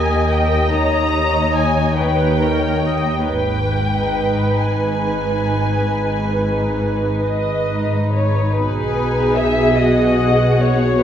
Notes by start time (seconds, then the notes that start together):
Already playing: D#2 G4 A#4 D#5 G#5
0.31 G5
0.71 D#2 D#4 C#5 A#5
1.14 D#4 C#5
1.56 G#5
1.98 D#2 B4 G5
2.40 D#4 A#4 C#5
2.85 D#5
3.27 G#1 G#2 B4 G5
3.73 D#4 B4
4.60 G#1 G#2 G#5
5.04 D#4 B4
5.93 G#1 G#2
6.38 D#4 B4
7.23 G#1 G#2 D#5
7.67 D#4 B4
8.12 C#5
8.53 B1 B2 D#4 G#4 B4 G#5
9.37 E5
9.78 F#4 D#5 F#5
10.60 C#5
11.00 B4